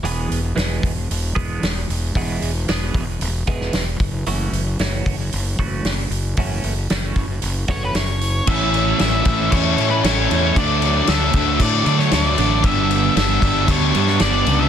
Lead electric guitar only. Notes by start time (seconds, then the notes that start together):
7.71 C#5
7.85 B4
7.96 C#5
8.48 E5
9.01 E5
9.51 C#5
9.77 C#5
9.90 B4
10.03 C#5
10.58 D5
11.09 E5
11.62 D5
11.87 D5
11.99 C#5
12.14 C#5
12.25 D5
12.65 E5
13.17 E5
13.71 C#5
14.21 D5
14.60 E5